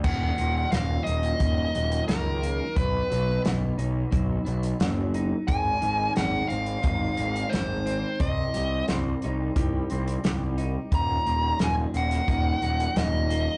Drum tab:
CC |x---------------|----------------|----------------|----------------|
HH |--x-x-xxx-xxx-x-|x-x-x-x-x-xxx-x-|x-x-x-xxx-xxx-x-|x-x-x-x-x-xxx-x-|
SD |----o-------o---|----o-------o---|----o-------o---|----o-------o---|
BD |o-------o-------|o-------o-------|o-------o-------|o-------o-------|

CC |----------------|
HH |x-x-x-xxx-xxx-x-|
SD |----o--o----o---|
BD |o-------o-------|